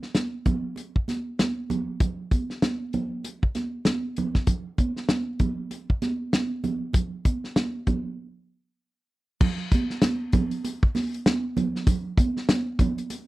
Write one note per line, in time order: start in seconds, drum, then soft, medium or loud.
0.03 snare soft
0.15 snare medium
0.15 closed hi-hat medium
0.15 high conga medium
0.46 kick medium
0.46 closed hi-hat medium
0.46 muted conga soft
0.46 high conga medium
0.46 low conga medium
0.76 closed hi-hat medium
0.76 muted conga soft
0.96 kick medium
1.08 snare soft
1.08 closed hi-hat medium
1.08 high conga medium
1.39 snare medium
1.39 closed hi-hat medium
1.39 muted conga soft
1.39 high conga medium
1.70 closed hi-hat medium
1.70 muted conga soft
1.70 high conga medium
1.70 low conga medium
2.00 kick loud
2.00 closed hi-hat medium
2.00 muted conga soft
2.00 low conga medium
2.31 kick medium
2.31 closed hi-hat medium
2.31 high conga soft
2.50 snare soft
2.62 snare loud
2.62 closed hi-hat medium
2.62 muted conga soft
2.62 high conga medium
2.93 closed hi-hat medium
2.93 muted conga soft
2.93 high conga medium
2.93 low conga medium
3.24 closed hi-hat medium
3.24 muted conga soft
3.43 kick medium
3.55 snare soft
3.55 closed hi-hat medium
3.55 muted conga soft
3.55 high conga medium
3.85 snare medium
3.85 closed hi-hat medium
3.85 muted conga soft
3.85 high conga medium
4.16 closed hi-hat medium
4.16 muted conga soft
4.16 high conga medium
4.16 low conga medium
4.34 kick medium
4.34 snare soft
4.47 kick loud
4.47 closed hi-hat loud
4.47 muted conga soft
4.47 low conga medium
4.78 kick medium
4.78 closed hi-hat medium
4.78 muted conga soft
4.78 high conga soft
4.96 snare soft
5.09 snare loud
5.09 closed hi-hat medium
5.09 muted conga soft
5.09 high conga medium
5.39 kick medium
5.39 closed hi-hat medium
5.39 muted conga soft
5.39 high conga medium
5.39 low conga medium
5.71 closed hi-hat medium
5.71 muted conga soft
5.90 kick medium
6.02 snare soft
6.02 closed hi-hat medium
6.02 muted conga soft
6.02 high conga medium
6.33 snare loud
6.33 closed hi-hat medium
6.33 muted conga soft
6.33 high conga medium
6.64 closed hi-hat medium
6.64 muted conga soft
6.64 high conga medium
6.64 low conga medium
6.93 kick loud
6.93 closed hi-hat medium
6.93 low conga medium
7.25 kick medium
7.25 closed hi-hat medium
7.25 high conga soft
7.44 snare soft
7.56 snare loud
7.56 closed hi-hat medium
7.56 muted conga soft
7.56 high conga medium
7.87 kick medium
7.87 closed hi-hat medium
7.87 muted conga soft
7.87 high conga medium
7.87 low conga medium
9.41 kick loud
9.41 crash loud
9.41 muted conga soft
9.41 low conga medium
9.72 kick loud
9.72 closed hi-hat medium
9.72 muted conga soft
9.72 high conga medium
9.90 snare soft
10.02 snare loud
10.02 closed hi-hat medium
10.02 muted conga soft
10.02 high conga medium
10.32 kick medium
10.32 closed hi-hat medium
10.32 high conga medium
10.32 low conga medium
10.51 closed hi-hat medium
10.65 closed hi-hat medium
10.65 muted conga soft
10.83 kick medium
10.95 snare soft
10.95 open hi-hat medium
10.95 muted conga soft
10.95 high conga medium
11.14 closed hi-hat medium
11.26 snare loud
11.26 closed hi-hat medium
11.26 muted conga soft
11.26 high conga medium
11.57 closed hi-hat medium
11.57 high conga medium
11.57 low conga medium
11.76 snare soft
11.87 kick loud
11.87 closed hi-hat loud
11.87 muted conga soft
11.87 low conga medium
12.18 kick loud
12.18 closed hi-hat medium
12.18 muted conga soft
12.18 high conga medium
12.37 snare soft
12.49 snare loud
12.49 closed hi-hat medium
12.49 high conga medium
12.79 kick medium
12.79 closed hi-hat medium
12.79 high conga medium
12.79 low conga medium
12.98 closed hi-hat medium
13.10 closed hi-hat loud
13.10 muted conga soft